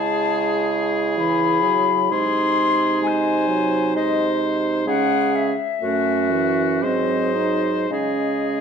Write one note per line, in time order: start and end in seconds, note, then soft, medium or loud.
0.00 2.07 C#3 medium
0.00 1.19 G#3 medium
0.00 2.13 E4 medium
0.00 2.07 G#4 medium
0.00 0.90 A5 medium
1.18 1.65 E3 medium
1.18 2.14 B5 loud
1.63 2.12 F#3 medium
2.10 4.82 C3 medium
2.10 3.01 G#3 medium
2.10 4.86 D#4 medium
2.10 3.09 G#4 medium
2.10 3.02 C6 loud
3.02 3.49 G#3 medium
3.02 3.93 G#5 medium
3.07 3.96 C5 medium
3.48 3.97 F#3 medium
3.96 4.85 G#3 medium
3.96 4.85 C5 medium
3.96 4.39 D#5 medium
4.86 5.53 C#3 medium
4.86 5.52 G#3 medium
4.86 5.53 C#4 medium
4.86 5.53 G#4 medium
4.86 5.37 F#5 medium
5.35 6.84 E5 medium
5.81 6.83 F#2 medium
5.81 6.32 A3 medium
5.81 6.84 C#4 medium
5.81 6.85 F#4 soft
6.31 6.83 E3 medium
6.81 7.90 G#2 medium
6.81 7.89 F#3 medium
6.81 7.34 C4 soft
6.81 7.91 C5 medium
6.81 7.89 D#5 medium
7.35 7.89 D#4 soft
7.90 8.61 C#3 soft
7.90 8.61 G#3 soft
7.90 8.61 C#4 soft
7.90 8.61 G#4 soft
7.90 8.61 D#5 medium